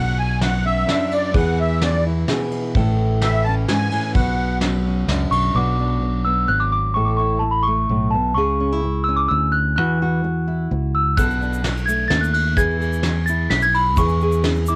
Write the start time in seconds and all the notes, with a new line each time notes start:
Already playing: B1 B2 F#4 F#5
0.19 G#5
0.41 F#3 F#5, snare, ride
0.65 C#4 E5
0.86 F#2 D4, snare, ride
1.11 D5, ride
1.34 E2 E3 G#4 F#5, kick, ride
1.60 E5
1.81 B3 D5, snare, ride
2.06 E4
2.28 B2 G#4, snare, ride
2.51 ride
2.75 A1 A2 A4, kick, ride
3.21 E3 E5, snare, ride
3.44 A5
3.48 C#4
3.68 G#2 G#5, snare, ride
3.91 A2, ride
4.14 B1 B2 F#4 F#5, kick, ride
4.61 F#3, snare, ride
4.87 C#4
5.08 C#2 F#2 D4, snare, ride
5.31 B1 C#6, ride
5.55 B1 B2 F#3 B3 D4 F#4 D6
5.80 D4
6.02 muted nylon-string guitar stroke
6.25 B3 E6
6.48 G#1 F#6, muted nylon-string guitar stroke
6.60 D6
6.72 D6
6.94 A1 A2 A4 C#6
7.05 D6
7.17 E4 C#6
7.39 A5, muted nylon-string guitar stroke
7.51 B5
7.63 C#6
7.68 A3
7.90 B1 A2
8.11 B2 A5
8.35 C#2 C#3 G#4 C#6
8.60 C#4
8.73 E4
8.84 muted nylon-string guitar stroke
9.04 E6
9.09 C#4
9.16 D6
9.28 D2 E6, muted nylon-string guitar stroke
9.52 F#6
9.76 E2 E3 F#4 F#6
10.02 F#4
10.24 muted nylon-string guitar stroke
10.47 E4
10.71 C#2, muted nylon-string guitar stroke
10.95 E6
11.17 B1 B2 A4 F#6, kick, ride, shaker
11.30 shaker
11.41 D4, shaker
11.53 shaker
11.64 muted nylon-string guitar stroke, snare, ride, shaker
11.77 shaker
11.86 A3 G#6, shaker
12.08 D#2 A6, muted nylon-string guitar stroke, snare, ride, shaker
12.21 F#6, shaker
12.34 F#6, ride
12.56 E2 E3 G#4 G#6, kick, ride, shaker
12.71 shaker
12.80 G#4, shaker
12.93 shaker
13.03 muted nylon-string guitar stroke, snare, ride, shaker
13.26 E4 A6, shaker
13.50 B1 B6, muted nylon-string guitar stroke, snare, ride, shaker
13.62 G#6, shaker
13.74 B5, ride
13.97 E2 E3 G#4 C#6, kick, ride, shaker
14.09 shaker
14.21 G#4, shaker
14.32 shaker
14.44 muted nylon-string guitar stroke, snare, ride, shaker
14.55 shaker
14.66 E4 D6, shaker